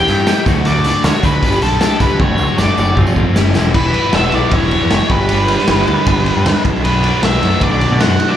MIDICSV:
0, 0, Header, 1, 6, 480
1, 0, Start_track
1, 0, Tempo, 386100
1, 824, Time_signature, 4, 2, 24, 8
1, 10403, End_track
2, 0, Start_track
2, 0, Title_t, "Lead electric guitar"
2, 0, Program_c, 0, 29
2, 0, Note_on_c, 0, 79, 86
2, 538, Note_off_c, 0, 79, 0
2, 820, Note_on_c, 0, 74, 100
2, 1297, Note_off_c, 0, 74, 0
2, 1302, Note_on_c, 0, 73, 82
2, 1547, Note_on_c, 0, 71, 90
2, 1551, Note_off_c, 0, 73, 0
2, 2017, Note_off_c, 0, 71, 0
2, 2022, Note_on_c, 0, 69, 82
2, 2497, Note_off_c, 0, 69, 0
2, 2502, Note_on_c, 0, 71, 72
2, 2727, Note_off_c, 0, 71, 0
2, 2750, Note_on_c, 0, 73, 91
2, 3208, Note_off_c, 0, 73, 0
2, 3213, Note_on_c, 0, 74, 75
2, 3666, Note_off_c, 0, 74, 0
2, 4663, Note_on_c, 0, 71, 84
2, 5155, Note_on_c, 0, 76, 84
2, 5159, Note_off_c, 0, 71, 0
2, 5404, Note_off_c, 0, 76, 0
2, 5404, Note_on_c, 0, 74, 79
2, 5642, Note_off_c, 0, 74, 0
2, 5651, Note_on_c, 0, 73, 75
2, 6357, Note_on_c, 0, 71, 75
2, 6379, Note_off_c, 0, 73, 0
2, 8220, Note_off_c, 0, 71, 0
2, 8506, Note_on_c, 0, 71, 88
2, 8952, Note_off_c, 0, 71, 0
2, 9000, Note_on_c, 0, 76, 101
2, 9481, Note_on_c, 0, 74, 98
2, 9486, Note_off_c, 0, 76, 0
2, 9580, Note_off_c, 0, 74, 0
2, 9595, Note_on_c, 0, 74, 82
2, 9949, Note_on_c, 0, 78, 109
2, 9960, Note_off_c, 0, 74, 0
2, 10304, Note_on_c, 0, 74, 81
2, 10317, Note_off_c, 0, 78, 0
2, 10403, Note_off_c, 0, 74, 0
2, 10403, End_track
3, 0, Start_track
3, 0, Title_t, "Overdriven electric guitar"
3, 0, Program_c, 1, 29
3, 94, Note_on_c, 1, 52, 82
3, 103, Note_on_c, 1, 59, 78
3, 110, Note_on_c, 1, 67, 79
3, 112, Note_on_c, 1, 64, 81
3, 328, Note_off_c, 1, 52, 0
3, 335, Note_off_c, 1, 59, 0
3, 339, Note_off_c, 1, 64, 0
3, 343, Note_on_c, 1, 52, 82
3, 344, Note_off_c, 1, 67, 0
3, 350, Note_on_c, 1, 59, 72
3, 354, Note_on_c, 1, 64, 72
3, 359, Note_on_c, 1, 67, 89
3, 569, Note_off_c, 1, 52, 0
3, 572, Note_off_c, 1, 59, 0
3, 573, Note_on_c, 1, 50, 94
3, 574, Note_off_c, 1, 64, 0
3, 577, Note_off_c, 1, 67, 0
3, 582, Note_on_c, 1, 54, 84
3, 584, Note_on_c, 1, 57, 96
3, 588, Note_on_c, 1, 62, 76
3, 594, Note_on_c, 1, 66, 94
3, 801, Note_off_c, 1, 50, 0
3, 810, Note_off_c, 1, 54, 0
3, 816, Note_on_c, 1, 50, 88
3, 819, Note_off_c, 1, 62, 0
3, 822, Note_off_c, 1, 57, 0
3, 824, Note_on_c, 1, 54, 89
3, 827, Note_off_c, 1, 66, 0
3, 827, Note_on_c, 1, 57, 99
3, 834, Note_on_c, 1, 62, 100
3, 842, Note_on_c, 1, 66, 89
3, 1047, Note_off_c, 1, 50, 0
3, 1053, Note_off_c, 1, 54, 0
3, 1056, Note_off_c, 1, 62, 0
3, 1062, Note_on_c, 1, 50, 88
3, 1066, Note_off_c, 1, 66, 0
3, 1068, Note_on_c, 1, 54, 75
3, 1071, Note_on_c, 1, 62, 95
3, 1072, Note_off_c, 1, 57, 0
3, 1077, Note_on_c, 1, 57, 94
3, 1080, Note_on_c, 1, 66, 87
3, 1277, Note_off_c, 1, 50, 0
3, 1286, Note_off_c, 1, 54, 0
3, 1292, Note_on_c, 1, 50, 76
3, 1295, Note_off_c, 1, 62, 0
3, 1297, Note_off_c, 1, 66, 0
3, 1301, Note_on_c, 1, 54, 73
3, 1302, Note_off_c, 1, 57, 0
3, 1307, Note_on_c, 1, 57, 78
3, 1309, Note_on_c, 1, 62, 72
3, 1312, Note_on_c, 1, 66, 91
3, 1516, Note_off_c, 1, 50, 0
3, 1524, Note_off_c, 1, 54, 0
3, 1531, Note_on_c, 1, 50, 80
3, 1537, Note_off_c, 1, 62, 0
3, 1537, Note_off_c, 1, 66, 0
3, 1539, Note_on_c, 1, 54, 78
3, 1541, Note_off_c, 1, 57, 0
3, 1546, Note_on_c, 1, 57, 82
3, 1552, Note_on_c, 1, 62, 88
3, 1552, Note_on_c, 1, 66, 86
3, 1764, Note_off_c, 1, 50, 0
3, 1768, Note_off_c, 1, 54, 0
3, 1774, Note_off_c, 1, 62, 0
3, 1775, Note_off_c, 1, 66, 0
3, 1784, Note_on_c, 1, 55, 81
3, 1785, Note_off_c, 1, 57, 0
3, 1790, Note_on_c, 1, 59, 89
3, 1795, Note_on_c, 1, 62, 94
3, 1798, Note_on_c, 1, 67, 93
3, 2003, Note_off_c, 1, 55, 0
3, 2013, Note_off_c, 1, 59, 0
3, 2018, Note_off_c, 1, 62, 0
3, 2018, Note_on_c, 1, 55, 83
3, 2022, Note_off_c, 1, 67, 0
3, 2028, Note_on_c, 1, 59, 79
3, 2033, Note_on_c, 1, 62, 78
3, 2037, Note_on_c, 1, 67, 89
3, 2248, Note_off_c, 1, 55, 0
3, 2255, Note_off_c, 1, 59, 0
3, 2259, Note_off_c, 1, 62, 0
3, 2262, Note_off_c, 1, 67, 0
3, 2263, Note_on_c, 1, 55, 80
3, 2269, Note_on_c, 1, 59, 84
3, 2273, Note_on_c, 1, 62, 82
3, 2277, Note_on_c, 1, 67, 86
3, 2493, Note_off_c, 1, 55, 0
3, 2495, Note_off_c, 1, 59, 0
3, 2503, Note_off_c, 1, 62, 0
3, 2505, Note_off_c, 1, 67, 0
3, 2508, Note_on_c, 1, 55, 71
3, 2510, Note_on_c, 1, 59, 76
3, 2518, Note_on_c, 1, 62, 82
3, 2520, Note_on_c, 1, 67, 80
3, 2733, Note_off_c, 1, 55, 0
3, 2734, Note_off_c, 1, 59, 0
3, 2738, Note_off_c, 1, 62, 0
3, 2739, Note_off_c, 1, 67, 0
3, 2747, Note_on_c, 1, 54, 101
3, 2747, Note_on_c, 1, 57, 85
3, 2752, Note_on_c, 1, 62, 89
3, 2761, Note_on_c, 1, 66, 99
3, 2967, Note_off_c, 1, 54, 0
3, 2972, Note_off_c, 1, 57, 0
3, 2978, Note_off_c, 1, 62, 0
3, 2981, Note_on_c, 1, 54, 70
3, 2984, Note_off_c, 1, 66, 0
3, 2987, Note_on_c, 1, 57, 74
3, 2993, Note_on_c, 1, 62, 83
3, 2998, Note_on_c, 1, 66, 89
3, 3203, Note_off_c, 1, 54, 0
3, 3213, Note_off_c, 1, 57, 0
3, 3217, Note_off_c, 1, 62, 0
3, 3218, Note_on_c, 1, 54, 74
3, 3219, Note_off_c, 1, 66, 0
3, 3228, Note_on_c, 1, 57, 77
3, 3232, Note_on_c, 1, 62, 76
3, 3234, Note_on_c, 1, 66, 80
3, 3445, Note_off_c, 1, 54, 0
3, 3451, Note_off_c, 1, 57, 0
3, 3458, Note_off_c, 1, 66, 0
3, 3460, Note_on_c, 1, 54, 82
3, 3461, Note_off_c, 1, 62, 0
3, 3465, Note_on_c, 1, 57, 80
3, 3473, Note_on_c, 1, 66, 99
3, 3476, Note_on_c, 1, 62, 84
3, 3688, Note_off_c, 1, 57, 0
3, 3689, Note_off_c, 1, 54, 0
3, 3695, Note_off_c, 1, 66, 0
3, 3697, Note_off_c, 1, 62, 0
3, 3697, Note_on_c, 1, 53, 88
3, 3703, Note_on_c, 1, 57, 85
3, 3714, Note_on_c, 1, 65, 114
3, 3716, Note_on_c, 1, 60, 93
3, 3928, Note_off_c, 1, 53, 0
3, 3934, Note_off_c, 1, 57, 0
3, 3936, Note_off_c, 1, 65, 0
3, 3938, Note_off_c, 1, 60, 0
3, 3943, Note_on_c, 1, 53, 71
3, 3949, Note_on_c, 1, 57, 81
3, 3951, Note_on_c, 1, 65, 89
3, 3953, Note_on_c, 1, 60, 74
3, 4170, Note_off_c, 1, 53, 0
3, 4173, Note_off_c, 1, 57, 0
3, 4174, Note_off_c, 1, 65, 0
3, 4175, Note_off_c, 1, 60, 0
3, 4180, Note_on_c, 1, 45, 89
3, 4187, Note_on_c, 1, 55, 87
3, 4188, Note_on_c, 1, 52, 88
3, 4194, Note_on_c, 1, 61, 103
3, 4200, Note_on_c, 1, 64, 99
3, 4408, Note_off_c, 1, 45, 0
3, 4416, Note_off_c, 1, 52, 0
3, 4423, Note_off_c, 1, 61, 0
3, 4423, Note_on_c, 1, 45, 80
3, 4424, Note_off_c, 1, 55, 0
3, 4425, Note_off_c, 1, 64, 0
3, 4431, Note_on_c, 1, 52, 83
3, 4438, Note_on_c, 1, 61, 79
3, 4439, Note_on_c, 1, 55, 79
3, 4440, Note_on_c, 1, 64, 89
3, 4647, Note_off_c, 1, 52, 0
3, 4650, Note_off_c, 1, 45, 0
3, 4658, Note_off_c, 1, 55, 0
3, 4658, Note_off_c, 1, 61, 0
3, 4659, Note_off_c, 1, 64, 0
3, 4662, Note_on_c, 1, 52, 76
3, 4897, Note_on_c, 1, 71, 72
3, 5125, Note_on_c, 1, 66, 55
3, 5374, Note_on_c, 1, 59, 72
3, 5616, Note_on_c, 1, 64, 69
3, 5849, Note_off_c, 1, 59, 0
3, 5854, Note_on_c, 1, 59, 67
3, 5863, Note_off_c, 1, 52, 0
3, 6090, Note_off_c, 1, 64, 0
3, 6105, Note_on_c, 1, 64, 66
3, 6335, Note_off_c, 1, 66, 0
3, 6337, Note_on_c, 1, 55, 62
3, 6345, Note_off_c, 1, 64, 0
3, 6574, Note_off_c, 1, 55, 0
3, 6589, Note_on_c, 1, 55, 75
3, 6811, Note_off_c, 1, 71, 0
3, 6816, Note_on_c, 1, 71, 75
3, 7054, Note_on_c, 1, 67, 70
3, 7301, Note_off_c, 1, 59, 0
3, 7306, Note_on_c, 1, 59, 68
3, 7535, Note_on_c, 1, 62, 71
3, 7772, Note_off_c, 1, 59, 0
3, 7777, Note_on_c, 1, 59, 68
3, 7786, Note_off_c, 1, 55, 0
3, 7999, Note_off_c, 1, 62, 0
3, 8014, Note_on_c, 1, 62, 73
3, 8259, Note_off_c, 1, 62, 0
3, 8259, Note_off_c, 1, 67, 0
3, 8266, Note_on_c, 1, 47, 66
3, 8491, Note_off_c, 1, 47, 0
3, 8506, Note_on_c, 1, 47, 70
3, 8734, Note_off_c, 1, 71, 0
3, 8739, Note_on_c, 1, 74, 68
3, 8983, Note_on_c, 1, 66, 70
3, 9218, Note_off_c, 1, 59, 0
3, 9223, Note_on_c, 1, 57, 67
3, 9462, Note_on_c, 1, 62, 74
3, 9685, Note_off_c, 1, 57, 0
3, 9690, Note_on_c, 1, 57, 64
3, 9705, Note_off_c, 1, 47, 0
3, 9926, Note_off_c, 1, 62, 0
3, 9941, Note_off_c, 1, 74, 0
3, 9941, Note_on_c, 1, 62, 70
3, 10162, Note_off_c, 1, 66, 0
3, 10177, Note_on_c, 1, 66, 61
3, 10403, Note_off_c, 1, 57, 0
3, 10403, Note_off_c, 1, 62, 0
3, 10403, Note_off_c, 1, 66, 0
3, 10403, End_track
4, 0, Start_track
4, 0, Title_t, "Overdriven electric guitar"
4, 0, Program_c, 2, 29
4, 4663, Note_on_c, 2, 54, 72
4, 4676, Note_on_c, 2, 59, 67
4, 4685, Note_on_c, 2, 64, 75
4, 6329, Note_on_c, 2, 43, 70
4, 6340, Note_on_c, 2, 50, 67
4, 6344, Note_off_c, 2, 54, 0
4, 6355, Note_off_c, 2, 64, 0
4, 6356, Note_off_c, 2, 59, 0
4, 6361, Note_on_c, 2, 59, 76
4, 6367, Note_on_c, 2, 62, 66
4, 8248, Note_off_c, 2, 50, 0
4, 8256, Note_off_c, 2, 43, 0
4, 8266, Note_on_c, 2, 54, 74
4, 8275, Note_off_c, 2, 59, 0
4, 8275, Note_off_c, 2, 62, 0
4, 8280, Note_on_c, 2, 59, 75
4, 8296, Note_on_c, 2, 62, 82
4, 10403, Note_off_c, 2, 54, 0
4, 10403, Note_off_c, 2, 59, 0
4, 10403, Note_off_c, 2, 62, 0
4, 10403, End_track
5, 0, Start_track
5, 0, Title_t, "Picked electric bass"
5, 0, Program_c, 3, 34
5, 110, Note_on_c, 3, 43, 83
5, 295, Note_off_c, 3, 43, 0
5, 579, Note_on_c, 3, 38, 83
5, 769, Note_off_c, 3, 38, 0
5, 817, Note_on_c, 3, 38, 88
5, 1007, Note_off_c, 3, 38, 0
5, 1054, Note_on_c, 3, 37, 88
5, 1152, Note_off_c, 3, 37, 0
5, 1293, Note_on_c, 3, 38, 94
5, 1392, Note_off_c, 3, 38, 0
5, 1533, Note_on_c, 3, 38, 78
5, 1725, Note_off_c, 3, 38, 0
5, 1778, Note_on_c, 3, 31, 88
5, 1968, Note_off_c, 3, 31, 0
5, 2017, Note_on_c, 3, 35, 71
5, 2208, Note_off_c, 3, 35, 0
5, 2494, Note_on_c, 3, 37, 80
5, 2686, Note_off_c, 3, 37, 0
5, 2736, Note_on_c, 3, 30, 89
5, 2928, Note_off_c, 3, 30, 0
5, 2970, Note_on_c, 3, 37, 92
5, 3070, Note_off_c, 3, 37, 0
5, 3204, Note_on_c, 3, 30, 83
5, 3307, Note_off_c, 3, 30, 0
5, 3456, Note_on_c, 3, 30, 87
5, 3648, Note_off_c, 3, 30, 0
5, 3695, Note_on_c, 3, 29, 91
5, 3887, Note_off_c, 3, 29, 0
5, 3935, Note_on_c, 3, 33, 76
5, 4033, Note_off_c, 3, 33, 0
5, 4180, Note_on_c, 3, 30, 74
5, 4399, Note_off_c, 3, 30, 0
5, 4418, Note_on_c, 3, 28, 84
5, 4638, Note_off_c, 3, 28, 0
5, 4659, Note_on_c, 3, 28, 74
5, 4849, Note_off_c, 3, 28, 0
5, 5143, Note_on_c, 3, 28, 95
5, 5332, Note_off_c, 3, 28, 0
5, 5387, Note_on_c, 3, 35, 90
5, 5480, Note_off_c, 3, 35, 0
5, 5618, Note_on_c, 3, 28, 90
5, 5902, Note_off_c, 3, 28, 0
5, 5990, Note_on_c, 3, 40, 75
5, 6082, Note_off_c, 3, 40, 0
5, 6107, Note_on_c, 3, 30, 91
5, 6200, Note_off_c, 3, 30, 0
5, 6343, Note_on_c, 3, 31, 98
5, 6906, Note_off_c, 3, 31, 0
5, 7069, Note_on_c, 3, 31, 95
5, 7255, Note_off_c, 3, 31, 0
5, 7310, Note_on_c, 3, 38, 91
5, 7402, Note_off_c, 3, 38, 0
5, 7543, Note_on_c, 3, 31, 95
5, 7825, Note_off_c, 3, 31, 0
5, 7919, Note_on_c, 3, 43, 82
5, 8007, Note_off_c, 3, 43, 0
5, 8028, Note_on_c, 3, 38, 96
5, 8120, Note_off_c, 3, 38, 0
5, 8272, Note_on_c, 3, 35, 92
5, 8831, Note_off_c, 3, 35, 0
5, 8997, Note_on_c, 3, 35, 96
5, 9179, Note_off_c, 3, 35, 0
5, 9240, Note_on_c, 3, 42, 88
5, 9327, Note_off_c, 3, 42, 0
5, 9470, Note_on_c, 3, 35, 97
5, 9749, Note_off_c, 3, 35, 0
5, 9833, Note_on_c, 3, 47, 89
5, 9923, Note_off_c, 3, 47, 0
5, 9962, Note_on_c, 3, 42, 88
5, 10142, Note_off_c, 3, 42, 0
5, 10403, End_track
6, 0, Start_track
6, 0, Title_t, "Drums"
6, 97, Note_on_c, 9, 42, 59
6, 221, Note_off_c, 9, 42, 0
6, 330, Note_on_c, 9, 42, 74
6, 334, Note_on_c, 9, 38, 106
6, 339, Note_on_c, 9, 54, 93
6, 455, Note_off_c, 9, 42, 0
6, 458, Note_off_c, 9, 38, 0
6, 463, Note_off_c, 9, 54, 0
6, 573, Note_on_c, 9, 42, 64
6, 575, Note_on_c, 9, 36, 98
6, 590, Note_on_c, 9, 54, 75
6, 697, Note_off_c, 9, 42, 0
6, 700, Note_off_c, 9, 36, 0
6, 702, Note_off_c, 9, 54, 0
6, 702, Note_on_c, 9, 54, 26
6, 809, Note_on_c, 9, 42, 79
6, 827, Note_off_c, 9, 54, 0
6, 933, Note_off_c, 9, 42, 0
6, 943, Note_on_c, 9, 54, 30
6, 1048, Note_on_c, 9, 42, 65
6, 1053, Note_off_c, 9, 54, 0
6, 1053, Note_on_c, 9, 54, 68
6, 1172, Note_off_c, 9, 42, 0
6, 1178, Note_off_c, 9, 54, 0
6, 1292, Note_on_c, 9, 42, 80
6, 1293, Note_on_c, 9, 54, 96
6, 1296, Note_on_c, 9, 38, 101
6, 1416, Note_off_c, 9, 42, 0
6, 1417, Note_off_c, 9, 54, 0
6, 1420, Note_off_c, 9, 38, 0
6, 1532, Note_on_c, 9, 42, 58
6, 1534, Note_on_c, 9, 36, 70
6, 1535, Note_on_c, 9, 54, 73
6, 1647, Note_off_c, 9, 54, 0
6, 1647, Note_on_c, 9, 54, 25
6, 1656, Note_off_c, 9, 42, 0
6, 1658, Note_off_c, 9, 36, 0
6, 1772, Note_off_c, 9, 54, 0
6, 1773, Note_on_c, 9, 42, 75
6, 1774, Note_on_c, 9, 36, 85
6, 1893, Note_on_c, 9, 54, 73
6, 1897, Note_off_c, 9, 42, 0
6, 1898, Note_off_c, 9, 36, 0
6, 2011, Note_on_c, 9, 42, 62
6, 2017, Note_off_c, 9, 54, 0
6, 2136, Note_off_c, 9, 42, 0
6, 2245, Note_on_c, 9, 42, 79
6, 2249, Note_on_c, 9, 38, 107
6, 2251, Note_on_c, 9, 54, 88
6, 2369, Note_off_c, 9, 42, 0
6, 2373, Note_off_c, 9, 38, 0
6, 2375, Note_off_c, 9, 54, 0
6, 2485, Note_on_c, 9, 42, 68
6, 2488, Note_on_c, 9, 54, 62
6, 2490, Note_on_c, 9, 36, 80
6, 2610, Note_off_c, 9, 42, 0
6, 2610, Note_off_c, 9, 54, 0
6, 2610, Note_on_c, 9, 54, 24
6, 2614, Note_off_c, 9, 36, 0
6, 2731, Note_on_c, 9, 36, 109
6, 2732, Note_on_c, 9, 48, 51
6, 2733, Note_off_c, 9, 54, 0
6, 2733, Note_on_c, 9, 54, 21
6, 2855, Note_off_c, 9, 36, 0
6, 2856, Note_off_c, 9, 48, 0
6, 2857, Note_off_c, 9, 54, 0
6, 2957, Note_on_c, 9, 54, 67
6, 3081, Note_off_c, 9, 54, 0
6, 3085, Note_on_c, 9, 54, 27
6, 3209, Note_off_c, 9, 54, 0
6, 3210, Note_on_c, 9, 54, 94
6, 3214, Note_on_c, 9, 38, 68
6, 3335, Note_off_c, 9, 54, 0
6, 3339, Note_off_c, 9, 38, 0
6, 3451, Note_on_c, 9, 54, 77
6, 3574, Note_off_c, 9, 54, 0
6, 3574, Note_on_c, 9, 54, 23
6, 3691, Note_on_c, 9, 36, 78
6, 3694, Note_on_c, 9, 45, 75
6, 3698, Note_off_c, 9, 54, 0
6, 3699, Note_on_c, 9, 54, 24
6, 3812, Note_off_c, 9, 54, 0
6, 3812, Note_on_c, 9, 54, 76
6, 3816, Note_off_c, 9, 36, 0
6, 3818, Note_off_c, 9, 45, 0
6, 3932, Note_on_c, 9, 36, 70
6, 3936, Note_off_c, 9, 54, 0
6, 3938, Note_on_c, 9, 54, 24
6, 4056, Note_off_c, 9, 36, 0
6, 4063, Note_off_c, 9, 54, 0
6, 4175, Note_on_c, 9, 38, 93
6, 4177, Note_on_c, 9, 54, 93
6, 4299, Note_off_c, 9, 38, 0
6, 4302, Note_off_c, 9, 54, 0
6, 4413, Note_on_c, 9, 54, 75
6, 4415, Note_on_c, 9, 38, 73
6, 4537, Note_off_c, 9, 54, 0
6, 4539, Note_off_c, 9, 38, 0
6, 4655, Note_on_c, 9, 36, 96
6, 4656, Note_on_c, 9, 49, 98
6, 4779, Note_off_c, 9, 36, 0
6, 4780, Note_off_c, 9, 49, 0
6, 4897, Note_on_c, 9, 51, 60
6, 5022, Note_off_c, 9, 51, 0
6, 5129, Note_on_c, 9, 51, 79
6, 5133, Note_on_c, 9, 38, 95
6, 5254, Note_off_c, 9, 51, 0
6, 5257, Note_off_c, 9, 38, 0
6, 5371, Note_on_c, 9, 51, 57
6, 5375, Note_on_c, 9, 38, 29
6, 5495, Note_off_c, 9, 51, 0
6, 5499, Note_off_c, 9, 38, 0
6, 5611, Note_on_c, 9, 51, 84
6, 5616, Note_on_c, 9, 36, 107
6, 5735, Note_off_c, 9, 51, 0
6, 5740, Note_off_c, 9, 36, 0
6, 5857, Note_on_c, 9, 51, 59
6, 5981, Note_off_c, 9, 51, 0
6, 6097, Note_on_c, 9, 51, 86
6, 6101, Note_on_c, 9, 38, 102
6, 6221, Note_off_c, 9, 51, 0
6, 6225, Note_off_c, 9, 38, 0
6, 6335, Note_on_c, 9, 51, 68
6, 6338, Note_on_c, 9, 36, 92
6, 6459, Note_off_c, 9, 51, 0
6, 6462, Note_off_c, 9, 36, 0
6, 6572, Note_on_c, 9, 51, 85
6, 6696, Note_off_c, 9, 51, 0
6, 6815, Note_on_c, 9, 51, 76
6, 6940, Note_off_c, 9, 51, 0
6, 6943, Note_on_c, 9, 38, 32
6, 7055, Note_on_c, 9, 51, 95
6, 7059, Note_off_c, 9, 38, 0
6, 7059, Note_on_c, 9, 38, 103
6, 7179, Note_off_c, 9, 51, 0
6, 7183, Note_off_c, 9, 38, 0
6, 7304, Note_on_c, 9, 51, 66
6, 7428, Note_off_c, 9, 51, 0
6, 7539, Note_on_c, 9, 51, 89
6, 7543, Note_on_c, 9, 36, 97
6, 7663, Note_off_c, 9, 51, 0
6, 7668, Note_off_c, 9, 36, 0
6, 7783, Note_on_c, 9, 51, 64
6, 7907, Note_off_c, 9, 51, 0
6, 8027, Note_on_c, 9, 51, 87
6, 8031, Note_on_c, 9, 38, 99
6, 8152, Note_off_c, 9, 51, 0
6, 8155, Note_off_c, 9, 38, 0
6, 8267, Note_on_c, 9, 36, 95
6, 8272, Note_on_c, 9, 51, 62
6, 8391, Note_off_c, 9, 36, 0
6, 8396, Note_off_c, 9, 51, 0
6, 8512, Note_on_c, 9, 51, 81
6, 8637, Note_off_c, 9, 51, 0
6, 8748, Note_on_c, 9, 51, 64
6, 8872, Note_off_c, 9, 51, 0
6, 8985, Note_on_c, 9, 51, 93
6, 8988, Note_on_c, 9, 38, 99
6, 9109, Note_off_c, 9, 51, 0
6, 9113, Note_off_c, 9, 38, 0
6, 9234, Note_on_c, 9, 51, 59
6, 9238, Note_on_c, 9, 38, 30
6, 9358, Note_off_c, 9, 51, 0
6, 9362, Note_off_c, 9, 38, 0
6, 9465, Note_on_c, 9, 36, 106
6, 9465, Note_on_c, 9, 51, 87
6, 9590, Note_off_c, 9, 36, 0
6, 9590, Note_off_c, 9, 51, 0
6, 9712, Note_on_c, 9, 51, 62
6, 9836, Note_off_c, 9, 51, 0
6, 9950, Note_on_c, 9, 51, 93
6, 9954, Note_on_c, 9, 38, 110
6, 10074, Note_off_c, 9, 51, 0
6, 10078, Note_off_c, 9, 38, 0
6, 10190, Note_on_c, 9, 51, 68
6, 10314, Note_off_c, 9, 51, 0
6, 10403, End_track
0, 0, End_of_file